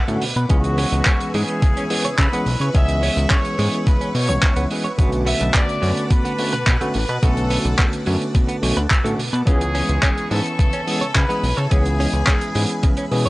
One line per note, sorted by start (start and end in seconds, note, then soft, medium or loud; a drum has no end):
0.00 9.43 B4 medium
0.00 0.22 F#5 loud
0.00 0.46 F#5 medium
0.00 0.48 B5 medium
0.00 0.46 D6 medium
0.07 0.18 A2 medium
0.07 0.23 D3 loud
0.07 0.23 A3 medium
0.07 0.15 A3 loud
0.07 0.23 B3 medium
0.07 0.23 C#4 medium
0.07 0.23 F#4 loud
0.07 closed hi-hat medium
0.22 0.33 B2 soft
0.22 open hi-hat loud
0.36 0.46 B2 medium
0.36 0.43 B4 medium
0.36 closed hi-hat medium
0.49 0.86 C#2 loud
0.49 1.30 E3 loud
0.49 1.30 G#3 loud
0.49 1.31 B3 loud
0.49 0.61 C#4 medium
0.49 1.31 C#4 medium
0.49 1.30 F#4 loud
0.49 1.31 G#4 loud
0.49 4.95 E5 medium
0.49 2.72 G#5 medium
0.49 4.95 C#6 medium
0.49 kick loud
0.49 closed hi-hat medium
0.64 closed hi-hat soft
0.78 0.85 C#4 loud
0.78 open hi-hat loud
0.92 1.02 C#2 loud
0.92 closed hi-hat medium
1.05 1.10 C#4 loud
1.05 kick loud
1.05 clap loud
1.05 closed hi-hat medium
1.20 closed hi-hat medium
1.34 1.44 G#2 medium
1.34 1.87 E3 medium
1.34 1.87 G#3 medium
1.34 1.42 G#3 loud
1.34 1.87 B3 medium
1.34 1.87 C#4 medium
1.34 1.87 G#4 medium
1.34 2.19 G#4 loud
1.34 open hi-hat medium
1.48 closed hi-hat medium
1.62 1.73 C#3 medium
1.62 kick loud
1.62 closed hi-hat medium
1.77 1.84 C#4 loud
1.77 closed hi-hat medium
1.90 2.05 E3 medium
1.90 2.05 G#3 medium
1.90 2.05 B3 medium
1.90 2.05 C#4 medium
1.90 2.05 G#4 loud
1.90 open hi-hat loud
2.04 2.15 C#3 soft
2.04 2.09 C#5 loud
2.04 closed hi-hat medium
2.18 2.28 C#3 medium
2.18 2.71 B4 loud
2.18 kick loud
2.18 clap loud
2.18 closed hi-hat medium
2.32 2.47 E3 loud
2.32 2.47 G#3 medium
2.32 2.47 B3 medium
2.32 2.40 B3 loud
2.32 2.47 C#4 medium
2.32 2.47 G#4 loud
2.32 closed hi-hat medium
2.46 2.56 B1 medium
2.46 open hi-hat medium
2.60 2.70 C#3 medium
2.60 2.68 C#5 medium
2.60 closed hi-hat medium
2.74 3.10 C#2 loud
2.74 3.55 E3 loud
2.74 3.55 G#3 loud
2.74 3.55 B3 medium
2.74 3.55 C#4 loud
2.74 2.85 C#4 medium
2.74 3.56 G#4 loud
2.74 3.27 E5 loud
2.74 9.43 F#5 medium
2.74 kick loud
2.74 closed hi-hat medium
2.88 closed hi-hat medium
3.03 3.10 C#4 loud
3.03 open hi-hat loud
3.17 3.26 C#2 loud
3.17 closed hi-hat medium
3.30 3.35 C#4 loud
3.30 3.83 C#5 loud
3.30 kick loud
3.30 clap loud
3.30 closed hi-hat medium
3.45 closed hi-hat medium
3.58 3.68 G#2 medium
3.58 4.11 E3 medium
3.58 4.11 G#3 medium
3.58 3.66 G#3 loud
3.58 4.11 B3 medium
3.58 4.11 C#4 medium
3.58 4.11 G#4 medium
3.58 open hi-hat loud
3.73 closed hi-hat soft
3.87 3.97 C#3 medium
3.87 4.15 B4 loud
3.87 kick loud
3.87 closed hi-hat medium
4.01 4.08 C#4 loud
4.01 closed hi-hat medium
4.14 4.30 B2 medium
4.14 4.68 C#5 loud
4.14 open hi-hat loud
4.29 4.38 B1 medium
4.29 4.67 E3 medium
4.29 4.68 G#3 medium
4.29 4.67 B3 medium
4.29 4.68 C#4 medium
4.29 4.33 C#5 loud
4.29 4.68 C#5 loud
4.29 closed hi-hat medium
4.42 kick loud
4.42 clap loud
4.42 closed hi-hat medium
4.56 4.66 C#2 medium
4.56 4.64 B3 loud
4.56 closed hi-hat medium
4.70 4.86 E3 medium
4.70 4.86 G#3 medium
4.70 4.86 B3 medium
4.70 4.86 C#4 medium
4.70 4.86 G#4 medium
4.70 open hi-hat medium
4.84 4.91 C#5 medium
4.84 closed hi-hat medium
4.98 5.34 B1 loud
4.98 5.79 D3 loud
4.98 5.79 A3 medium
4.98 5.09 B3 medium
4.98 5.80 B3 medium
4.98 5.80 C#4 loud
4.98 5.80 F#4 loud
4.98 9.43 A5 medium
4.98 9.43 D6 medium
4.98 kick loud
4.98 closed hi-hat medium
5.12 closed hi-hat soft
5.26 5.34 B3 loud
5.26 5.53 E5 loud
5.26 open hi-hat loud
5.41 5.51 B1 medium
5.41 closed hi-hat medium
5.54 5.59 B3 loud
5.54 6.07 D5 loud
5.54 kick loud
5.54 clap loud
5.54 closed hi-hat medium
5.69 closed hi-hat medium
5.82 5.93 F#2 medium
5.82 6.35 D3 medium
5.82 5.89 F#3 loud
5.82 6.35 A3 medium
5.82 6.36 B3 medium
5.82 6.36 C#4 medium
5.82 6.36 F#4 medium
5.82 open hi-hat loud
5.97 closed hi-hat medium
6.10 6.21 B2 medium
6.10 6.93 B4 loud
6.10 kick loud
6.10 closed hi-hat medium
6.25 6.32 B3 loud
6.25 closed hi-hat medium
6.38 6.54 D3 medium
6.38 6.54 A3 medium
6.38 6.54 B3 medium
6.38 6.54 C#4 medium
6.38 6.54 F#4 loud
6.38 open hi-hat loud
6.52 6.64 B2 soft
6.52 6.57 B4 loud
6.52 closed hi-hat medium
6.67 6.77 B2 medium
6.67 kick loud
6.67 clap loud
6.67 closed hi-hat medium
6.80 6.95 D3 medium
6.80 6.96 A3 medium
6.80 6.88 A3 loud
6.80 6.96 B3 medium
6.80 6.96 C#4 medium
6.80 6.96 F#4 loud
6.80 closed hi-hat medium
6.94 7.05 A1 medium
6.94 7.21 B4 medium
6.94 open hi-hat medium
7.09 7.19 B2 medium
7.09 7.16 B4 medium
7.09 closed hi-hat medium
7.23 7.58 B1 loud
7.23 8.03 D3 loud
7.23 8.04 A3 loud
7.23 7.33 B3 medium
7.23 8.04 B3 loud
7.23 8.04 C#4 loud
7.23 8.04 F#4 loud
7.23 8.07 A4 loud
7.23 kick loud
7.23 closed hi-hat medium
7.37 closed hi-hat medium
7.50 7.58 B3 loud
7.50 open hi-hat loud
7.65 7.75 B1 loud
7.65 closed hi-hat medium
7.78 7.83 B3 loud
7.78 kick loud
7.78 clap loud
7.78 closed hi-hat medium
7.93 closed hi-hat medium
8.06 8.17 F#2 loud
8.06 8.59 D3 medium
8.06 8.14 F#3 loud
8.06 8.59 A3 medium
8.06 8.60 B3 medium
8.06 8.60 C#4 medium
8.06 8.60 F#4 medium
8.06 open hi-hat medium
8.22 closed hi-hat medium
8.35 8.46 B2 medium
8.35 kick loud
8.35 closed hi-hat medium
8.48 8.56 B3 loud
8.48 closed hi-hat medium
8.62 8.73 B1 medium
8.62 8.77 D3 medium
8.62 8.78 A3 medium
8.62 8.78 B3 medium
8.62 8.78 C#4 medium
8.62 8.78 F#4 loud
8.62 open hi-hat loud
8.77 8.87 D2 loud
8.77 8.81 B4 loud
8.77 closed hi-hat medium
8.91 kick loud
8.91 clap loud
8.91 closed hi-hat medium
9.04 9.15 A2 medium
9.04 9.19 D3 loud
9.04 9.12 A3 loud
9.04 9.20 A3 medium
9.04 9.20 B3 medium
9.04 9.20 C#4 medium
9.04 9.20 F#4 loud
9.04 closed hi-hat medium
9.19 9.30 B2 soft
9.19 open hi-hat loud
9.33 9.43 B2 medium
9.33 9.40 B4 medium
9.33 closed hi-hat medium
9.45 9.83 C#2 loud
9.45 10.27 E3 loud
9.45 10.27 G#3 loud
9.45 10.27 B3 medium
9.45 10.28 C#4 loud
9.45 9.58 C#4 medium
9.45 10.27 G#4 loud
9.45 10.28 G#4 loud
9.45 13.29 B4 medium
9.45 13.29 E5 medium
9.45 13.29 G#5 medium
9.45 11.69 C#6 medium
9.45 kick loud
9.45 closed hi-hat medium
9.61 closed hi-hat medium
9.75 9.82 C#4 loud
9.75 open hi-hat loud
9.89 9.99 C#2 loud
9.89 closed hi-hat medium
10.03 10.07 C#4 loud
10.03 kick loud
10.03 clap loud
10.03 closed hi-hat medium
10.18 closed hi-hat medium
10.30 10.41 G#2 medium
10.30 10.84 E3 medium
10.30 10.38 G#3 loud
10.30 10.84 B3 medium
10.30 10.84 C#4 medium
10.30 11.15 A4 loud
10.30 10.84 B4 medium
10.30 open hi-hat loud
10.45 closed hi-hat medium
10.59 10.70 C#3 medium
10.59 kick loud
10.59 closed hi-hat medium
10.73 10.80 C#4 loud
10.73 closed hi-hat medium
10.87 11.02 E3 medium
10.87 11.02 G#3 medium
10.87 11.02 B3 medium
10.87 11.02 C#4 medium
10.87 11.02 G#4 loud
10.87 open hi-hat loud
11.01 11.12 C#3 soft
11.01 11.05 C#5 loud
11.01 closed hi-hat medium
11.15 11.25 C#3 medium
11.15 11.57 B4 loud
11.15 kick loud
11.15 clap loud
11.15 closed hi-hat medium
11.29 11.44 E3 loud
11.29 11.44 G#3 medium
11.29 11.36 B3 loud
11.29 11.44 B3 medium
11.29 11.44 C#4 medium
11.29 11.44 G#4 loud
11.29 closed hi-hat medium
11.43 11.53 B1 medium
11.43 open hi-hat loud
11.57 11.67 C#3 medium
11.57 11.72 A4 loud
11.57 11.64 C#5 medium
11.57 closed hi-hat medium
11.71 12.07 C#2 loud
11.71 12.52 E3 loud
11.71 12.52 G#3 loud
11.71 12.52 B3 medium
11.71 11.82 C#4 medium
11.71 12.53 C#4 medium
11.71 13.29 G#4 loud
11.71 12.53 G#4 loud
11.71 13.29 B5 medium
11.71 kick loud
11.71 closed hi-hat medium
11.86 closed hi-hat medium
12.00 12.07 C#4 loud
12.00 open hi-hat loud
12.13 12.23 C#2 loud
12.13 closed hi-hat medium
12.27 12.32 C#4 loud
12.27 kick loud
12.27 clap loud
12.27 closed hi-hat medium
12.41 closed hi-hat medium
12.55 12.65 G#2 medium
12.55 13.08 E3 medium
12.55 13.08 G#3 medium
12.55 12.63 G#3 loud
12.55 13.08 B3 medium
12.55 13.08 C#4 medium
12.55 13.09 G#4 medium
12.55 open hi-hat loud
12.70 closed hi-hat medium
12.83 12.94 C#3 medium
12.83 kick loud
12.83 closed hi-hat medium
12.97 13.05 C#4 loud
12.97 closed hi-hat medium
13.11 13.27 B2 loud
13.11 13.26 E3 medium
13.11 13.26 G#3 medium
13.11 13.26 B3 medium
13.11 13.27 C#4 medium
13.11 13.27 G#4 loud
13.11 open hi-hat loud
13.25 13.29 B1 medium
13.25 13.29 C#5 loud
13.25 closed hi-hat medium